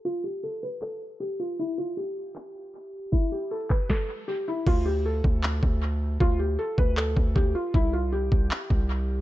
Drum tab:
CC |------------------------------------------------|------------------------------------------------|------------------------------------------------|x-----------------------------------------------|
HH |---x--x--x--------x--x--------x--x--x-------x-x-|x--x--x--x--x-----x--x--------x-----x-----x-x-x-|x--x--x--x--x--x--x--x--------------------------|------------------------------------------------|
CP |------------------------x-----------------------|------------------------x-----------------------|------------------x-----------------------------|------------------------x-----------------------|
SD |------------------------------------------------|------------------------------------------------|------------------------o-----------------------|------------------------------------------------|
BD |------------------------------------------------|------------------------------------------------|o-----------------o-----o-----------------------|o-----------------o-----------o-----------------|

CC |------------------------------------------------|------------------------------------------------|
HH |------------------------------------------------|------------------------------------------------|
CP |------------------------x-----------------------|------------------------x-----------------------|
SD |------------------------------------------------|------------------------------------------------|
BD |o-----------------o-----------o-----o-----------|o-----------------o-----------o-----------------|